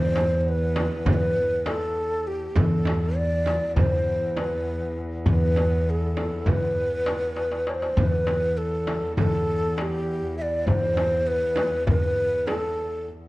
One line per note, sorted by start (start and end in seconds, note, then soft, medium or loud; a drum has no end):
0.00 0.88 E2 loud
0.00 2.55 E2 medium
0.00 0.41 C5 medium
0.15 darbuka tek medium
0.15 frame drum medium
0.41 0.50 C5 medium
0.45 1.08 B4 loud
0.45 darbuka ka soft
0.76 darbuka tek medium
0.76 frame drum medium
1.06 1.32 E2 loud
1.06 1.14 C5 medium
1.06 darbuka dum medium
1.06 frame drum medium
1.13 1.69 B4 loud
1.36 darbuka ka soft
1.66 2.29 A4 medium
1.66 darbuka tek medium
1.66 frame drum medium
2.27 2.59 G4 medium
2.27 darbuka ka soft
2.56 7.96 E2 medium
2.56 3.57 E2 loud
2.56 3.18 A4 medium
2.56 frame drum medium
2.56 darbuka dum loud
2.85 darbuka tek medium
2.85 frame drum medium
3.16 3.76 D5 medium
3.16 darbuka ka soft
3.46 darbuka tek medium
3.46 frame drum medium
3.76 4.77 E2 loud
3.76 4.40 C5 medium
3.76 darbuka dum medium
3.76 frame drum loud
4.07 darbuka ka soft
4.36 4.97 B4 medium
4.36 darbuka tek medium
4.36 frame drum medium
4.97 darbuka ka soft
5.26 6.28 E2 loud
5.26 5.91 B4 medium
5.26 frame drum medium
5.26 darbuka dum medium
5.56 darbuka tek medium
5.56 frame drum medium
5.86 6.51 A4 medium
5.86 darbuka ka soft
6.17 darbuka tek medium
6.17 frame drum medium
6.46 6.72 E2 medium
6.46 7.71 B4 medium
6.46 darbuka dum medium
6.46 frame drum medium
6.77 darbuka ka soft
7.06 darbuka tek medium
7.06 frame drum medium
7.36 darbuka tek medium
7.51 darbuka ka medium
7.67 7.75 C#5 medium
7.67 darbuka tek medium
7.74 7.99 C5 medium
7.82 darbuka ka medium
7.96 13.28 E2 medium
7.96 8.98 E2 loud
7.96 8.59 B4 medium
7.96 darbuka dum medium
7.96 frame drum medium
8.27 darbuka tek medium
8.27 frame drum medium
8.57 9.16 A4 medium
8.57 darbuka ka soft
8.87 darbuka tek medium
8.87 frame drum medium
9.17 10.18 E2 medium
9.17 9.77 A4 medium
9.17 darbuka dum medium
9.17 frame drum medium
9.48 darbuka ka soft
9.77 10.37 G4 medium
9.77 9.82 A4 medium
9.77 darbuka tek medium
9.77 frame drum medium
10.37 10.43 E5 medium
10.37 darbuka ka soft
10.42 10.65 D5 medium
10.67 11.68 E2 medium
10.67 11.29 C5 medium
10.67 frame drum medium
10.67 darbuka dum medium
10.97 darbuka tek medium
10.97 frame drum medium
11.27 11.87 B4 loud
11.27 darbuka ka soft
11.56 darbuka tek medium
11.56 frame drum medium
11.87 12.12 E2 loud
11.87 12.48 B4 loud
11.87 darbuka dum medium
11.87 frame drum medium
12.17 darbuka ka soft
12.47 13.07 A4 medium
12.47 darbuka tek medium
12.47 frame drum medium
13.08 darbuka ka soft